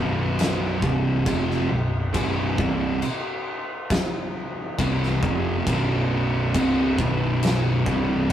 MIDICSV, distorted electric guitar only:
0, 0, Header, 1, 2, 480
1, 0, Start_track
1, 0, Tempo, 879765
1, 1171, Time_signature, 4, 2, 24, 8
1, 4542, End_track
2, 0, Start_track
2, 0, Title_t, "Distorted electric guitar"
2, 0, Program_c, 0, 30
2, 0, Note_on_c, 0, 35, 94
2, 0, Note_on_c, 0, 42, 92
2, 0, Note_on_c, 0, 47, 99
2, 443, Note_off_c, 0, 35, 0
2, 445, Note_off_c, 0, 42, 0
2, 446, Note_off_c, 0, 47, 0
2, 446, Note_on_c, 0, 36, 87
2, 451, Note_on_c, 0, 43, 109
2, 454, Note_on_c, 0, 48, 105
2, 681, Note_off_c, 0, 36, 0
2, 684, Note_off_c, 0, 43, 0
2, 685, Note_off_c, 0, 48, 0
2, 687, Note_on_c, 0, 41, 97
2, 691, Note_on_c, 0, 48, 93
2, 695, Note_on_c, 0, 53, 101
2, 922, Note_off_c, 0, 41, 0
2, 924, Note_off_c, 0, 48, 0
2, 926, Note_off_c, 0, 53, 0
2, 926, Note_on_c, 0, 35, 72
2, 928, Note_on_c, 0, 42, 74
2, 1121, Note_off_c, 0, 35, 0
2, 1122, Note_off_c, 0, 42, 0
2, 1162, Note_on_c, 0, 35, 93
2, 1166, Note_on_c, 0, 42, 106
2, 1169, Note_on_c, 0, 47, 118
2, 1399, Note_off_c, 0, 35, 0
2, 1402, Note_off_c, 0, 42, 0
2, 1403, Note_off_c, 0, 47, 0
2, 1405, Note_on_c, 0, 36, 97
2, 1409, Note_on_c, 0, 43, 102
2, 1412, Note_on_c, 0, 48, 107
2, 1641, Note_off_c, 0, 36, 0
2, 1643, Note_off_c, 0, 43, 0
2, 1644, Note_off_c, 0, 48, 0
2, 2610, Note_on_c, 0, 36, 95
2, 2614, Note_on_c, 0, 43, 103
2, 2617, Note_on_c, 0, 48, 105
2, 2844, Note_off_c, 0, 36, 0
2, 2845, Note_off_c, 0, 43, 0
2, 2847, Note_off_c, 0, 48, 0
2, 2851, Note_on_c, 0, 41, 90
2, 2856, Note_on_c, 0, 48, 93
2, 2858, Note_on_c, 0, 53, 110
2, 3084, Note_off_c, 0, 41, 0
2, 3086, Note_off_c, 0, 48, 0
2, 3087, Note_off_c, 0, 53, 0
2, 3093, Note_on_c, 0, 35, 102
2, 3097, Note_on_c, 0, 42, 103
2, 3099, Note_on_c, 0, 47, 114
2, 3564, Note_off_c, 0, 35, 0
2, 3566, Note_off_c, 0, 42, 0
2, 3567, Note_off_c, 0, 47, 0
2, 3575, Note_on_c, 0, 36, 93
2, 3578, Note_on_c, 0, 43, 98
2, 3581, Note_on_c, 0, 48, 103
2, 3805, Note_off_c, 0, 36, 0
2, 3807, Note_off_c, 0, 43, 0
2, 3808, Note_off_c, 0, 48, 0
2, 3814, Note_on_c, 0, 35, 92
2, 3817, Note_on_c, 0, 42, 103
2, 3819, Note_on_c, 0, 47, 111
2, 4284, Note_off_c, 0, 35, 0
2, 4286, Note_off_c, 0, 42, 0
2, 4287, Note_off_c, 0, 47, 0
2, 4292, Note_on_c, 0, 36, 99
2, 4294, Note_on_c, 0, 43, 107
2, 4297, Note_on_c, 0, 48, 103
2, 4523, Note_off_c, 0, 36, 0
2, 4524, Note_off_c, 0, 43, 0
2, 4526, Note_off_c, 0, 48, 0
2, 4542, End_track
0, 0, End_of_file